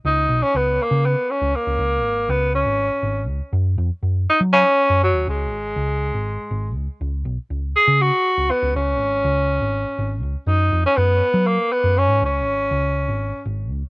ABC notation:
X:1
M:7/8
L:1/16
Q:1/4=121
K:Cblyd
V:1 name="Tenor saxophone"
E3 D C2 B,2 C2 D2 B,2- | B,4 C2 D6 z2 | z6 E2 D4 G,2 | A,12 z2 |
z6 A2 G4 C2 | D12 z2 | E3 D C4 B,2 C2 D2 | D8- D2 z4 |]
V:2 name="Picked electric bass" clef=bass
D,,2 C,, z D,,2 z D,2 z2 D,, z D,, | D,,2 A,,,2 D,,3 A,,,2 z A,,,2 D,, z | G,,2 F,, z G,,2 z G,2 z2 G,,2 E,, | D,,2 A,,,2 D,,3 A,,,2 z A,,,2 D,, z |
D,,2 C,, z D,,2 z D,2 z2 D,, z D,, | D,,2 A,,,2 D,,3 A,,,2 z A,,,2 D,, z | G,,2 F,, z G,,2 z G,2 z2 G,,2 A,, | D,,2 A,,,2 D,,3 A,,,2 z A,,,2 D,, z |]